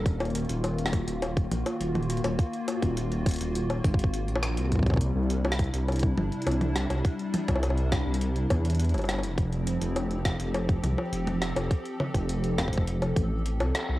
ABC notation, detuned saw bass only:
X:1
M:4/4
L:1/16
Q:1/4=103
K:Cmix
V:1 name="Detuned saw bass" clef=bass
_E,,,3 E,,,4 E,,,3 B,,, z E,,,3 E,,, | z3 _E,,,4 E,,,3 _A,,,3 B,,,2 C,,- | C,,3 C,,4 C,,3 G,,, z C,,3 C,, | z3 C,,4 C,,3 E,,3 G,,,2 F,,,- |
F,,,3 F,,,4 F,,,3 C,, z F,,,3 F,,, | z3 F,,,4 F,,,3 A,,,3 C,, z C,, |]